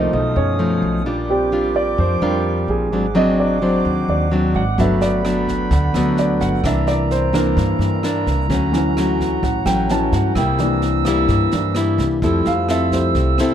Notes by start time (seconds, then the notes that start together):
Already playing: C3 D#3 F3 A3 A#3 D4 D#4 A#4 C5 D#5 D6
0.12 B1 B2 F3 A3 D#4 A4 F5 D#6
0.36 F#2 C#4 C#5
0.59 F3 A3 D#4
0.82 B1
1.05 A#1 A#2 G3 D4 F4 A#4 G5 D6
1.29 G3 C4 D4 G4
1.52 G3 D4 F4
1.76 D5
1.98 F2 F3 C5
2.21 F2 G3 C4 D4 F4 A#4
2.68 A#1 G#4
2.91 G#1 G#2 F#3 C4 D4 C5 F#5 D6
3.15 F#3 C4 D4 D#5
3.40 D5
3.62 F#3 C4 D4 C5
3.85 D#2 D#3
4.08 D#2 D5
4.32 F#3 C4 D4
4.55 G#1 F#5
4.78 G1 G2 F#3 A3 B3 D4 E5 G5 B5, kick, snare
5.01 D5, snare
5.25 F#3 B3 D4, cross-stick, snare
5.48 kick, snare
5.71 D2 D3 F#5, kick, snare
5.94 D2 F#3 A3 B3 D4 A4, cross-stick, snare
6.17 D5, snare
6.40 G1 F#5, kick, snare
6.63 C2 C3 E3 A#3 D4 A#4 E5 A#5, kick, cross-stick, snare
6.87 D5, snare
7.11 C5, snare
7.33 E3 A#3 D4 A#4, kick, cross-stick, snare
7.57 G2, kick, snare
7.79 G2, snare
8.03 E3 A#3 D4, cross-stick, snare
8.26 C2, kick, snare
8.49 D2 D3 F#3 A3 C#4 C#5 F#5, kick, snare
8.72 E3 F#3 C#4, snare
8.97 F#3 A3 C#4, cross-stick, snare
9.20 kick, snare
9.43 A1 A2 F#5, kick, snare
9.66 A1 F#3 A3 C#4 G5, cross-stick, snare
9.89 E3 F#3 C#4 A5, snare
10.12 G2 F#5, kick, snare
10.35 C2 C3 G3 A#3 E4 C5 G5 A#5 E6, kick, cross-stick, snare
10.58 E3 A#3 D4, snare
10.82 snare
11.05 G3 A#3 E4, kick, cross-stick, snare
11.28 G2, kick, snare
11.52 G2 E3 A#3 D4, snare
11.75 G3 A#3 E4, cross-stick, snare
11.98 C2, kick, snare
12.22 F2 F3 G3 A3 C4 E4 A4 E5 E6, kick, snare
12.45 F2 F5, snare
12.69 C4 E4 A4 E5, cross-stick, snare
12.92 G3 A3 E4 C5, kick, snare
13.15 C2 C3, kick, snare
13.38 C4 E4 A4, cross-stick, snare